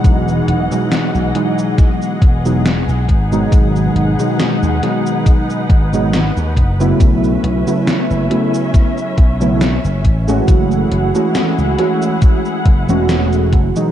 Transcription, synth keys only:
X:1
M:4/4
L:1/16
Q:"Swing 16ths" 1/4=69
K:F#dor
V:1 name="Synth keys" clef=bass
[B,,E,F,G,D]3 [B,,E,F,G,D]3 [B,,E,F,G,D]4 z [B,,E,F,G,D] z3 [B,,D,F,G,D]- | [B,,D,F,G,D]3 [B,,D,F,G,D]3 [B,,D,F,G,D]4 z [B,,D,F,G,D] z3 [C,F,A,B,E]- | [C,F,A,B,E]3 [C,F,A,B,E]3 [C,F,A,B,E]4 z [C,F,A,B,E] z3 [E,G,A,CF]- | [E,G,A,CF]3 [E,G,A,CF]3 [E,G,A,CF]4 z [E,G,A,CF]4 [B,,E,F,G,D] |]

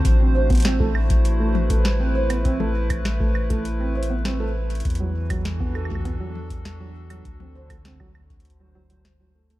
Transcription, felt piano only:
X:1
M:4/4
L:1/16
Q:1/4=100
K:Ephr
V:1 name="Felt piano"
z C c B, C A, z3 A, z A, z C c B, | C A, z3 A, z A, z C c B, C A, z2 | z ^F, z F, z B, A A, B, F, z3 F, z F, | z C c A, C ^F, z3 F, F, F, z F, A, A, |]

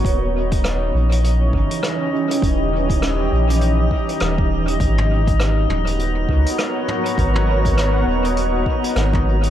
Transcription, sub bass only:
X:1
M:4/4
L:1/8
Q:"Swing 16ths" 1/4=101
K:G#m
V:1 name="Sub bass" clef=bass
D,,,3 A,,,2 =G,,, z2 | D,,,3 A,,,2 z D,,,2 | G,,,3 D,,,2 C,, z2 | G,,,3 D,,,2 z G,,,2 |]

